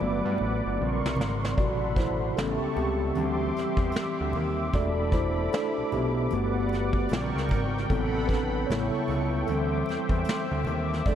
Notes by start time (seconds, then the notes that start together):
Already playing: F#4 D5 D6
0.00 G1 F#3 A3 B3 B4 D5 F#5, high conga
0.25 G2
0.38 A1, muted conga
0.66 G1
0.78 A#1 C#3 G3 C4 A#4 C6 C#6
1.05 C2, snare
1.16 G#1, high conga, low conga
1.21 snare
1.45 snare
1.57 A1 B2 C3 F#3 F#4 A4 D5 F#5 B5, kick, closed hi-hat
1.96 E4 C5, kick, snare, closed hi-hat, muted conga, high conga
2.36 A1 C#3 G3 B3 C#4 G4 A4 E5 A5 C#6, snare, closed hi-hat, muted conga
2.62 C#2
2.76 C#2 C4 G4, closed hi-hat, muted conga, low conga
3.14 D2 E3 G3 C4 G4 C6 D6, closed hi-hat, high conga
3.56 E2, snare, closed hi-hat
3.77 E2, kick
3.92 closed hi-hat
3.96 snare
4.21 D2
4.33 D#2, open hi-hat, muted conga, high conga, low conga
4.73 E1 A3 D4 F#4 A4 D5 B5, kick, closed hi-hat, muted conga
5.12 E4 C5, kick, closed hi-hat, muted conga, high conga
5.53 D4 A4, snare, closed hi-hat, muted conga
5.78 B1
5.92 B1 B3 G4, closed hi-hat, muted conga, low conga
6.30 G1 A3 B3 F#4 B4 D5 F#5, closed hi-hat, muted conga, high conga
6.69 closed hi-hat, muted conga
6.74 snare
6.93 kick
7.09 A#1 C#3 G3 A#4 G5 C#6, closed hi-hat, muted conga
7.13 snare
7.35 C#2, snare
7.49 G#1, kick, closed hi-hat, muted conga, high conga, low conga
7.78 snare
7.89 A1 C3 F#3 B3 C4 A4 F#5 B5, kick, closed hi-hat
8.27 D4 B4, kick, closed hi-hat, muted conga, high conga
8.33 snare
8.67 A1 C#3 G3 A4 C#5 E5 G5 C#6, closed hi-hat
8.71 B3 E4, snare
8.93 C#2, closed hi-hat
9.08 C#2, closed hi-hat, muted conga, low conga
9.47 D2 E3 G3 C4 A4 C5 D6, closed hi-hat, muted conga, high conga
9.86 E2, closed hi-hat, muted conga
9.90 snare
10.09 E2, kick, closed hi-hat
10.25 closed hi-hat, muted conga
10.29 snare
10.51 D2
10.65 D#2, closed hi-hat, high conga, low conga
10.93 snare
11.06 E1 F#3 A3 B3 D4 A4 D5 A5, kick, closed hi-hat, muted conga